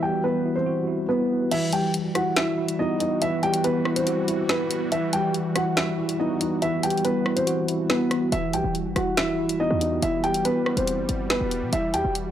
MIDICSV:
0, 0, Header, 1, 6, 480
1, 0, Start_track
1, 0, Key_signature, 1, "minor"
1, 0, Tempo, 425532
1, 1708, Time_signature, 4, 2, 24, 8
1, 13889, End_track
2, 0, Start_track
2, 0, Title_t, "Grand piano"
2, 0, Program_c, 0, 0
2, 29, Note_on_c, 0, 79, 76
2, 39, Note_on_c, 0, 67, 60
2, 244, Note_off_c, 0, 79, 0
2, 249, Note_off_c, 0, 67, 0
2, 269, Note_on_c, 0, 71, 79
2, 278, Note_on_c, 0, 59, 62
2, 607, Note_off_c, 0, 71, 0
2, 612, Note_off_c, 0, 59, 0
2, 627, Note_on_c, 0, 72, 80
2, 635, Note_on_c, 0, 60, 61
2, 1192, Note_off_c, 0, 72, 0
2, 1196, Note_off_c, 0, 60, 0
2, 1226, Note_on_c, 0, 71, 76
2, 1235, Note_on_c, 0, 59, 69
2, 1678, Note_off_c, 0, 71, 0
2, 1683, Note_off_c, 0, 59, 0
2, 1709, Note_on_c, 0, 76, 88
2, 1717, Note_on_c, 0, 64, 63
2, 1924, Note_off_c, 0, 76, 0
2, 1928, Note_off_c, 0, 64, 0
2, 1951, Note_on_c, 0, 79, 77
2, 1961, Note_on_c, 0, 67, 59
2, 2165, Note_off_c, 0, 79, 0
2, 2170, Note_off_c, 0, 67, 0
2, 2428, Note_on_c, 0, 78, 74
2, 2438, Note_on_c, 0, 66, 61
2, 2643, Note_off_c, 0, 78, 0
2, 2649, Note_off_c, 0, 66, 0
2, 2671, Note_on_c, 0, 76, 87
2, 2680, Note_on_c, 0, 64, 64
2, 3121, Note_off_c, 0, 76, 0
2, 3126, Note_off_c, 0, 64, 0
2, 3150, Note_on_c, 0, 75, 87
2, 3159, Note_on_c, 0, 63, 63
2, 3364, Note_off_c, 0, 75, 0
2, 3369, Note_off_c, 0, 63, 0
2, 3389, Note_on_c, 0, 75, 72
2, 3399, Note_on_c, 0, 63, 58
2, 3604, Note_off_c, 0, 75, 0
2, 3609, Note_off_c, 0, 63, 0
2, 3631, Note_on_c, 0, 76, 88
2, 3640, Note_on_c, 0, 64, 67
2, 3845, Note_off_c, 0, 76, 0
2, 3850, Note_off_c, 0, 64, 0
2, 3869, Note_on_c, 0, 79, 90
2, 3877, Note_on_c, 0, 67, 68
2, 4084, Note_off_c, 0, 79, 0
2, 4088, Note_off_c, 0, 67, 0
2, 4109, Note_on_c, 0, 71, 88
2, 4118, Note_on_c, 0, 59, 66
2, 4447, Note_off_c, 0, 71, 0
2, 4452, Note_off_c, 0, 59, 0
2, 4468, Note_on_c, 0, 72, 73
2, 4477, Note_on_c, 0, 60, 61
2, 5032, Note_off_c, 0, 72, 0
2, 5037, Note_off_c, 0, 60, 0
2, 5068, Note_on_c, 0, 71, 84
2, 5077, Note_on_c, 0, 59, 67
2, 5520, Note_off_c, 0, 71, 0
2, 5524, Note_off_c, 0, 59, 0
2, 5550, Note_on_c, 0, 76, 90
2, 5559, Note_on_c, 0, 64, 67
2, 5764, Note_off_c, 0, 76, 0
2, 5769, Note_off_c, 0, 64, 0
2, 5788, Note_on_c, 0, 79, 84
2, 5796, Note_on_c, 0, 67, 60
2, 6003, Note_off_c, 0, 79, 0
2, 6008, Note_off_c, 0, 67, 0
2, 6270, Note_on_c, 0, 78, 83
2, 6279, Note_on_c, 0, 66, 55
2, 6485, Note_off_c, 0, 78, 0
2, 6489, Note_off_c, 0, 66, 0
2, 6506, Note_on_c, 0, 76, 87
2, 6515, Note_on_c, 0, 64, 66
2, 6958, Note_off_c, 0, 76, 0
2, 6963, Note_off_c, 0, 64, 0
2, 6989, Note_on_c, 0, 75, 79
2, 6998, Note_on_c, 0, 63, 67
2, 7204, Note_off_c, 0, 75, 0
2, 7209, Note_off_c, 0, 63, 0
2, 7226, Note_on_c, 0, 75, 72
2, 7235, Note_on_c, 0, 63, 60
2, 7442, Note_off_c, 0, 75, 0
2, 7447, Note_off_c, 0, 63, 0
2, 7468, Note_on_c, 0, 76, 92
2, 7477, Note_on_c, 0, 64, 69
2, 7683, Note_off_c, 0, 76, 0
2, 7688, Note_off_c, 0, 64, 0
2, 7709, Note_on_c, 0, 79, 80
2, 7718, Note_on_c, 0, 67, 65
2, 7924, Note_off_c, 0, 79, 0
2, 7929, Note_off_c, 0, 67, 0
2, 7949, Note_on_c, 0, 71, 83
2, 7957, Note_on_c, 0, 59, 63
2, 8287, Note_off_c, 0, 71, 0
2, 8292, Note_off_c, 0, 59, 0
2, 8305, Note_on_c, 0, 72, 79
2, 8314, Note_on_c, 0, 60, 61
2, 8871, Note_off_c, 0, 72, 0
2, 8875, Note_off_c, 0, 60, 0
2, 8905, Note_on_c, 0, 71, 77
2, 8914, Note_on_c, 0, 59, 70
2, 9358, Note_off_c, 0, 71, 0
2, 9363, Note_off_c, 0, 59, 0
2, 9388, Note_on_c, 0, 76, 92
2, 9397, Note_on_c, 0, 64, 63
2, 9603, Note_off_c, 0, 76, 0
2, 9608, Note_off_c, 0, 64, 0
2, 9629, Note_on_c, 0, 79, 76
2, 9639, Note_on_c, 0, 67, 62
2, 9844, Note_off_c, 0, 79, 0
2, 9849, Note_off_c, 0, 67, 0
2, 10108, Note_on_c, 0, 78, 73
2, 10117, Note_on_c, 0, 66, 62
2, 10323, Note_off_c, 0, 78, 0
2, 10328, Note_off_c, 0, 66, 0
2, 10348, Note_on_c, 0, 76, 89
2, 10357, Note_on_c, 0, 64, 64
2, 10799, Note_off_c, 0, 76, 0
2, 10804, Note_off_c, 0, 64, 0
2, 10828, Note_on_c, 0, 75, 85
2, 10837, Note_on_c, 0, 63, 65
2, 11043, Note_off_c, 0, 75, 0
2, 11048, Note_off_c, 0, 63, 0
2, 11068, Note_on_c, 0, 75, 74
2, 11077, Note_on_c, 0, 63, 59
2, 11283, Note_off_c, 0, 75, 0
2, 11288, Note_off_c, 0, 63, 0
2, 11309, Note_on_c, 0, 76, 87
2, 11317, Note_on_c, 0, 64, 69
2, 11524, Note_off_c, 0, 76, 0
2, 11528, Note_off_c, 0, 64, 0
2, 11547, Note_on_c, 0, 79, 88
2, 11556, Note_on_c, 0, 67, 68
2, 11763, Note_off_c, 0, 79, 0
2, 11768, Note_off_c, 0, 67, 0
2, 11788, Note_on_c, 0, 71, 86
2, 11797, Note_on_c, 0, 59, 64
2, 12127, Note_off_c, 0, 71, 0
2, 12131, Note_off_c, 0, 59, 0
2, 12148, Note_on_c, 0, 72, 76
2, 12158, Note_on_c, 0, 60, 62
2, 12712, Note_off_c, 0, 72, 0
2, 12717, Note_off_c, 0, 60, 0
2, 12747, Note_on_c, 0, 71, 88
2, 12756, Note_on_c, 0, 59, 68
2, 13199, Note_off_c, 0, 71, 0
2, 13203, Note_off_c, 0, 59, 0
2, 13230, Note_on_c, 0, 76, 86
2, 13238, Note_on_c, 0, 64, 67
2, 13444, Note_off_c, 0, 76, 0
2, 13449, Note_off_c, 0, 64, 0
2, 13466, Note_on_c, 0, 79, 84
2, 13476, Note_on_c, 0, 67, 63
2, 13682, Note_off_c, 0, 79, 0
2, 13687, Note_off_c, 0, 67, 0
2, 13889, End_track
3, 0, Start_track
3, 0, Title_t, "Tine electric piano"
3, 0, Program_c, 1, 4
3, 0, Control_c, 1, 64, 127
3, 0, Note_on_c, 1, 52, 88
3, 0, Note_on_c, 1, 55, 78
3, 0, Note_on_c, 1, 59, 78
3, 0, Note_on_c, 1, 64, 82
3, 0, Note_on_c, 1, 66, 89
3, 30, Note_off_c, 1, 55, 0
3, 30, Note_on_c, 1, 55, 77
3, 267, Note_off_c, 1, 64, 0
3, 510, Note_off_c, 1, 59, 0
3, 513, Note_on_c, 1, 64, 73
3, 747, Note_off_c, 1, 66, 0
3, 747, Note_on_c, 1, 66, 100
3, 973, Note_off_c, 1, 64, 0
3, 986, Note_on_c, 1, 64, 81
3, 989, Note_off_c, 1, 52, 0
3, 1227, Note_on_c, 1, 59, 85
3, 1229, Note_off_c, 1, 55, 0
3, 1707, Note_off_c, 1, 59, 0
3, 1707, Note_off_c, 1, 64, 0
3, 1707, Note_off_c, 1, 66, 0
3, 1710, Note_on_c, 1, 52, 99
3, 1724, Control_c, 1, 64, 0
3, 1889, Control_c, 1, 64, 127
3, 1950, Note_on_c, 1, 55, 78
3, 2425, Note_on_c, 1, 64, 78
3, 2669, Note_on_c, 1, 66, 100
3, 2893, Note_off_c, 1, 64, 0
3, 2907, Note_on_c, 1, 64, 86
3, 2909, Note_off_c, 1, 52, 0
3, 3149, Note_off_c, 1, 55, 0
3, 3149, Note_on_c, 1, 59, 86
3, 3625, Note_on_c, 1, 52, 102
3, 3869, Note_off_c, 1, 66, 0
3, 3869, Note_on_c, 1, 55, 79
3, 4108, Note_off_c, 1, 64, 0
3, 4347, Note_on_c, 1, 64, 79
3, 4349, Note_off_c, 1, 59, 0
3, 4589, Note_on_c, 1, 66, 100
3, 4817, Note_off_c, 1, 64, 0
3, 4827, Note_off_c, 1, 52, 0
3, 4830, Note_on_c, 1, 64, 81
3, 5063, Note_on_c, 1, 59, 92
3, 5069, Note_off_c, 1, 55, 0
3, 5546, Note_off_c, 1, 59, 0
3, 5549, Note_off_c, 1, 64, 0
3, 5549, Note_off_c, 1, 66, 0
3, 5549, Note_on_c, 1, 52, 106
3, 5562, Control_c, 1, 64, 0
3, 5782, Control_c, 1, 64, 127
3, 5789, Note_on_c, 1, 55, 77
3, 6270, Note_on_c, 1, 64, 85
3, 6513, Note_on_c, 1, 66, 95
3, 6732, Note_off_c, 1, 64, 0
3, 6746, Note_on_c, 1, 64, 86
3, 6749, Note_off_c, 1, 52, 0
3, 6989, Note_off_c, 1, 55, 0
3, 6989, Note_on_c, 1, 59, 79
3, 7468, Note_on_c, 1, 52, 89
3, 7707, Note_on_c, 1, 55, 77
3, 7711, Note_off_c, 1, 66, 0
3, 7947, Note_off_c, 1, 64, 0
3, 8189, Note_off_c, 1, 59, 0
3, 8190, Note_on_c, 1, 64, 75
3, 8424, Note_on_c, 1, 66, 101
3, 8650, Note_off_c, 1, 64, 0
3, 8663, Note_on_c, 1, 64, 80
3, 8668, Note_off_c, 1, 52, 0
3, 8904, Note_on_c, 1, 59, 86
3, 8908, Note_off_c, 1, 55, 0
3, 9386, Note_off_c, 1, 59, 0
3, 9386, Note_off_c, 1, 64, 0
3, 9386, Note_off_c, 1, 66, 0
3, 9387, Note_on_c, 1, 52, 101
3, 9404, Control_c, 1, 64, 0
3, 9622, Control_c, 1, 64, 127
3, 9629, Note_on_c, 1, 55, 78
3, 10105, Note_on_c, 1, 64, 77
3, 10349, Note_on_c, 1, 66, 101
3, 10574, Note_off_c, 1, 64, 0
3, 10588, Note_off_c, 1, 52, 0
3, 10588, Note_on_c, 1, 64, 82
3, 10829, Note_off_c, 1, 55, 0
3, 10830, Note_on_c, 1, 59, 84
3, 11308, Note_off_c, 1, 64, 0
3, 11309, Note_off_c, 1, 59, 0
3, 11309, Note_off_c, 1, 66, 0
3, 13241, Control_c, 1, 64, 0
3, 13441, Control_c, 1, 64, 127
3, 13889, End_track
4, 0, Start_track
4, 0, Title_t, "Analog synth pad"
4, 0, Program_c, 2, 89
4, 0, Note_on_c, 2, 52, 79
4, 0, Note_on_c, 2, 55, 72
4, 0, Note_on_c, 2, 66, 88
4, 1662, Note_off_c, 2, 66, 0
4, 1663, Note_off_c, 2, 52, 0
4, 1663, Note_off_c, 2, 55, 0
4, 1709, Note_on_c, 2, 52, 84
4, 1709, Note_on_c, 2, 55, 71
4, 1709, Note_on_c, 2, 66, 88
4, 9344, Note_off_c, 2, 55, 0
4, 9388, Note_on_c, 2, 55, 74
4, 13184, Note_off_c, 2, 52, 0
4, 13184, Note_off_c, 2, 66, 0
4, 13227, Note_on_c, 2, 52, 81
4, 13227, Note_on_c, 2, 66, 89
4, 13889, Note_off_c, 2, 52, 0
4, 13889, Note_off_c, 2, 55, 0
4, 13889, Note_off_c, 2, 66, 0
4, 13889, End_track
5, 0, Start_track
5, 0, Title_t, "808-style bass"
5, 0, Program_c, 3, 38
5, 9388, Note_on_c, 3, 28, 110
5, 9628, Note_on_c, 3, 35, 98
5, 9645, Note_off_c, 3, 28, 0
5, 9742, Note_off_c, 3, 35, 0
5, 9748, Note_on_c, 3, 27, 110
5, 9988, Note_on_c, 3, 31, 96
5, 10005, Note_off_c, 3, 27, 0
5, 10102, Note_off_c, 3, 31, 0
5, 10108, Note_on_c, 3, 28, 103
5, 10588, Note_on_c, 3, 30, 99
5, 10605, Note_off_c, 3, 28, 0
5, 10768, Note_on_c, 3, 28, 98
5, 10785, Note_off_c, 3, 30, 0
5, 10939, Note_off_c, 3, 28, 0
5, 10948, Note_on_c, 3, 40, 101
5, 11294, Note_off_c, 3, 40, 0
5, 11308, Note_on_c, 3, 28, 109
5, 11769, Note_off_c, 3, 28, 0
5, 12148, Note_on_c, 3, 28, 107
5, 12388, Note_on_c, 3, 31, 96
5, 12405, Note_off_c, 3, 28, 0
5, 12502, Note_off_c, 3, 31, 0
5, 12508, Note_on_c, 3, 31, 103
5, 12854, Note_off_c, 3, 31, 0
5, 12867, Note_on_c, 3, 28, 108
5, 13108, Note_on_c, 3, 47, 101
5, 13125, Note_off_c, 3, 28, 0
5, 13222, Note_off_c, 3, 47, 0
5, 13228, Note_on_c, 3, 28, 108
5, 13468, Note_on_c, 3, 40, 101
5, 13485, Note_off_c, 3, 28, 0
5, 13582, Note_off_c, 3, 40, 0
5, 13588, Note_on_c, 3, 28, 103
5, 13889, Note_off_c, 3, 28, 0
5, 13889, End_track
6, 0, Start_track
6, 0, Title_t, "Drums"
6, 1709, Note_on_c, 9, 42, 77
6, 1709, Note_on_c, 9, 49, 93
6, 1821, Note_off_c, 9, 42, 0
6, 1822, Note_off_c, 9, 49, 0
6, 1946, Note_on_c, 9, 42, 81
6, 2059, Note_off_c, 9, 42, 0
6, 2189, Note_on_c, 9, 42, 65
6, 2301, Note_off_c, 9, 42, 0
6, 2427, Note_on_c, 9, 37, 94
6, 2428, Note_on_c, 9, 42, 79
6, 2540, Note_off_c, 9, 37, 0
6, 2540, Note_off_c, 9, 42, 0
6, 2667, Note_on_c, 9, 42, 86
6, 2668, Note_on_c, 9, 38, 120
6, 2780, Note_off_c, 9, 42, 0
6, 2781, Note_off_c, 9, 38, 0
6, 3029, Note_on_c, 9, 42, 86
6, 3141, Note_off_c, 9, 42, 0
6, 3388, Note_on_c, 9, 42, 81
6, 3501, Note_off_c, 9, 42, 0
6, 3628, Note_on_c, 9, 42, 79
6, 3741, Note_off_c, 9, 42, 0
6, 3868, Note_on_c, 9, 42, 46
6, 3981, Note_off_c, 9, 42, 0
6, 3989, Note_on_c, 9, 42, 82
6, 4101, Note_off_c, 9, 42, 0
6, 4108, Note_on_c, 9, 42, 71
6, 4221, Note_off_c, 9, 42, 0
6, 4347, Note_on_c, 9, 37, 98
6, 4460, Note_off_c, 9, 37, 0
6, 4470, Note_on_c, 9, 42, 83
6, 4582, Note_off_c, 9, 42, 0
6, 4588, Note_on_c, 9, 42, 88
6, 4701, Note_off_c, 9, 42, 0
6, 4829, Note_on_c, 9, 42, 83
6, 4941, Note_off_c, 9, 42, 0
6, 5068, Note_on_c, 9, 38, 116
6, 5181, Note_off_c, 9, 38, 0
6, 5308, Note_on_c, 9, 42, 78
6, 5421, Note_off_c, 9, 42, 0
6, 5548, Note_on_c, 9, 42, 82
6, 5661, Note_off_c, 9, 42, 0
6, 5786, Note_on_c, 9, 42, 83
6, 5899, Note_off_c, 9, 42, 0
6, 6028, Note_on_c, 9, 42, 66
6, 6141, Note_off_c, 9, 42, 0
6, 6267, Note_on_c, 9, 37, 99
6, 6267, Note_on_c, 9, 42, 80
6, 6379, Note_off_c, 9, 37, 0
6, 6380, Note_off_c, 9, 42, 0
6, 6508, Note_on_c, 9, 42, 89
6, 6509, Note_on_c, 9, 38, 114
6, 6621, Note_off_c, 9, 42, 0
6, 6622, Note_off_c, 9, 38, 0
6, 6869, Note_on_c, 9, 42, 83
6, 6981, Note_off_c, 9, 42, 0
6, 7228, Note_on_c, 9, 42, 78
6, 7341, Note_off_c, 9, 42, 0
6, 7468, Note_on_c, 9, 42, 78
6, 7581, Note_off_c, 9, 42, 0
6, 7708, Note_on_c, 9, 42, 75
6, 7788, Note_off_c, 9, 42, 0
6, 7788, Note_on_c, 9, 42, 62
6, 7868, Note_off_c, 9, 42, 0
6, 7868, Note_on_c, 9, 42, 47
6, 7948, Note_off_c, 9, 42, 0
6, 7948, Note_on_c, 9, 42, 68
6, 8061, Note_off_c, 9, 42, 0
6, 8187, Note_on_c, 9, 37, 98
6, 8300, Note_off_c, 9, 37, 0
6, 8309, Note_on_c, 9, 42, 81
6, 8422, Note_off_c, 9, 42, 0
6, 8428, Note_on_c, 9, 42, 89
6, 8541, Note_off_c, 9, 42, 0
6, 8668, Note_on_c, 9, 42, 82
6, 8781, Note_off_c, 9, 42, 0
6, 8908, Note_on_c, 9, 38, 112
6, 9021, Note_off_c, 9, 38, 0
6, 9148, Note_on_c, 9, 37, 98
6, 9148, Note_on_c, 9, 42, 79
6, 9261, Note_off_c, 9, 37, 0
6, 9261, Note_off_c, 9, 42, 0
6, 9388, Note_on_c, 9, 42, 78
6, 9501, Note_off_c, 9, 42, 0
6, 9627, Note_on_c, 9, 42, 85
6, 9739, Note_off_c, 9, 42, 0
6, 9868, Note_on_c, 9, 42, 65
6, 9981, Note_off_c, 9, 42, 0
6, 10107, Note_on_c, 9, 37, 94
6, 10107, Note_on_c, 9, 42, 80
6, 10220, Note_off_c, 9, 37, 0
6, 10220, Note_off_c, 9, 42, 0
6, 10348, Note_on_c, 9, 42, 87
6, 10349, Note_on_c, 9, 38, 112
6, 10460, Note_off_c, 9, 42, 0
6, 10461, Note_off_c, 9, 38, 0
6, 10708, Note_on_c, 9, 42, 88
6, 10821, Note_off_c, 9, 42, 0
6, 11068, Note_on_c, 9, 42, 81
6, 11181, Note_off_c, 9, 42, 0
6, 11308, Note_on_c, 9, 42, 81
6, 11421, Note_off_c, 9, 42, 0
6, 11548, Note_on_c, 9, 42, 48
6, 11661, Note_off_c, 9, 42, 0
6, 11668, Note_on_c, 9, 42, 83
6, 11781, Note_off_c, 9, 42, 0
6, 11788, Note_on_c, 9, 42, 69
6, 11901, Note_off_c, 9, 42, 0
6, 12027, Note_on_c, 9, 37, 97
6, 12140, Note_off_c, 9, 37, 0
6, 12149, Note_on_c, 9, 42, 82
6, 12262, Note_off_c, 9, 42, 0
6, 12267, Note_on_c, 9, 42, 89
6, 12380, Note_off_c, 9, 42, 0
6, 12508, Note_on_c, 9, 42, 82
6, 12621, Note_off_c, 9, 42, 0
6, 12747, Note_on_c, 9, 38, 114
6, 12860, Note_off_c, 9, 38, 0
6, 12988, Note_on_c, 9, 42, 79
6, 13100, Note_off_c, 9, 42, 0
6, 13227, Note_on_c, 9, 42, 82
6, 13340, Note_off_c, 9, 42, 0
6, 13466, Note_on_c, 9, 42, 83
6, 13578, Note_off_c, 9, 42, 0
6, 13708, Note_on_c, 9, 42, 64
6, 13820, Note_off_c, 9, 42, 0
6, 13889, End_track
0, 0, End_of_file